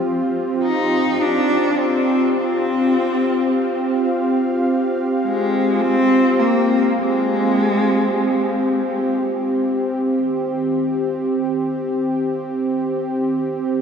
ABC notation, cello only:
X:1
M:4/4
L:1/8
Q:1/4=52
K:Ebmix
V:1 name="Cello"
z E =D C C3 z | z A, C B, A,3 z | z8 |]